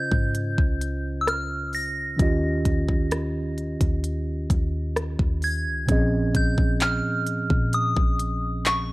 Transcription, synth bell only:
0.00 1.25 G6 medium
1.21 1.28 E6 medium
1.29 1.71 F6 medium
1.75 4.93 A#6 loud
5.44 6.38 G#6 loud
6.36 6.83 G6 medium
6.82 7.77 F6 medium
7.74 8.69 D#6 loud
8.67 8.93 C#6 medium

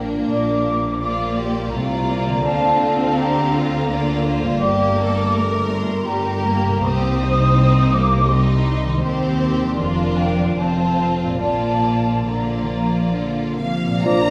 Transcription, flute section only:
0.31 1.33 D6 medium
1.38 1.73 C6 medium
1.71 2.44 A#5 medium
2.43 3.14 A5 medium
3.15 4.25 A#5 medium
4.59 5.64 D6 medium
5.68 6.06 C6 medium
6.06 6.84 A#5 medium
6.84 7.93 D#6 medium
7.93 8.29 D6 medium
8.30 9.02 C6 medium
9.04 10.17 C6 medium
10.17 10.57 G5 medium
10.58 11.13 A5 soft
11.40 12.26 A5 soft
12.27 13.14 A#5 soft

